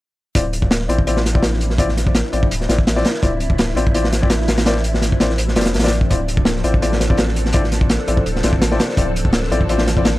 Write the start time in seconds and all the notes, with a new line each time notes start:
0.35 D1 F3 C4 D4 E4 F4 D5, kick, closed hi-hat
0.53 closed hi-hat
0.62 kick
0.71 snare, closed hi-hat
0.81 snare
0.89 A1 C4 E4 F4 D5, closed hi-hat
0.99 kick
1.07 C4 E4 F4 D5, closed hi-hat
1.17 snare
1.25 snare, closed hi-hat
1.35 C4 E4 F4 D5, kick
1.43 snare, closed hi-hat
1.53 snare
1.61 closed hi-hat
1.70 snare
1.78 C4 E4 F4 D5, kick, closed hi-hat
1.89 snare
1.97 snare, closed hi-hat
2.07 kick
2.15 snare, closed hi-hat
2.33 A1 C4 E4 F4 D5, closed hi-hat
2.43 kick
2.51 D1, closed hi-hat
2.61 snare
2.69 A1 C4 E4 F4 D5, snare, closed hi-hat
2.79 kick
2.87 snare, closed hi-hat
2.96 C4 E4 F4 D5, snare
3.05 snare, closed hi-hat
3.14 snare
3.23 D1 C4 E4 F4 D5, kick, closed hi-hat
3.40 closed hi-hat
3.50 kick
3.58 snare, closed hi-hat
3.68 snare
3.76 A1 C4 E4 F4 D5, closed hi-hat
3.87 kick
3.94 C4 E4 F4 D5, closed hi-hat
4.04 snare
4.12 snare, closed hi-hat
4.22 C4 E4 F4 D5, kick
4.30 snare, closed hi-hat
4.40 snare
4.48 snare, closed hi-hat
4.58 snare, closed hi-hat
4.66 C4 E4 F4 D5, snare, closed hi-hat
4.76 snare
4.84 closed hi-hat
4.94 snare
5.02 snare, closed hi-hat
5.12 kick
5.20 A1 C4 E4 F4 D5, snare, closed hi-hat
5.30 snare
5.38 closed hi-hat
5.48 snare
5.56 F1 C4 E4 F4 D5, snare, closed hi-hat
5.61 snare, closed hi-hat
5.65 snare, closed hi-hat
5.74 A1, snare, closed hi-hat
5.79 snare, closed hi-hat
5.84 C4 E4 F4 D5, snare, closed hi-hat
5.87 snare, closed hi-hat
5.92 closed hi-hat
6.01 kick
6.10 D1 C4 E4 F4 A4 D5, kick, closed hi-hat
6.28 closed hi-hat
6.37 kick
6.45 snare, closed hi-hat
6.56 snare
6.64 A1 C4 E4 F4 D5, closed hi-hat
6.74 kick
6.82 C4 E4 F4 D5, closed hi-hat
6.93 snare
7.00 snare, closed hi-hat
7.10 C4 E4 F4 D5, kick
7.18 snare, closed hi-hat
7.28 snare
7.36 closed hi-hat
7.45 snare
7.53 C4 E4 F4 D5, kick, closed hi-hat
7.64 snare
7.72 snare, closed hi-hat
7.81 kick
7.90 snare, closed hi-hat
8.08 A1 C4 E4 F4 D5, closed hi-hat
8.17 kick
8.26 D1, closed hi-hat
8.36 snare
8.43 A1 C4 E4 F4 D5, snare, closed hi-hat
8.53 kick
8.62 snare, closed hi-hat
8.72 C4 E4 F4 D5, snare
8.80 snare, closed hi-hat
8.89 snare
8.97 D1 C4 E4 F4 D5, kick, closed hi-hat
9.16 closed hi-hat
9.25 kick
9.33 snare, closed hi-hat
9.43 snare
9.51 A1 C4 E4 F4 D5, closed hi-hat
9.61 kick
9.69 C4 E4 F4 D5, closed hi-hat
9.78 snare
9.87 snare, closed hi-hat
9.97 C4 E4 F4 D5, kick
10.05 snare, closed hi-hat
10.15 snare